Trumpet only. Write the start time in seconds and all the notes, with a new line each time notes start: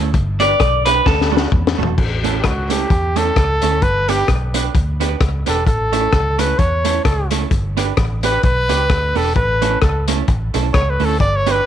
2.39 G4
2.46 F#4
2.72 G4
3.17 A4
3.83 B4
4.09 G4
5.49 A4
5.67 A4
6.39 B4
6.59 C#5
7.05 A4
8.25 B4
8.44 B4
9.17 A4
9.36 B4
9.82 A4
10.74 C#5
10.90 B4
11.05 A4
11.20 D5
11.36 C#5
11.51 B4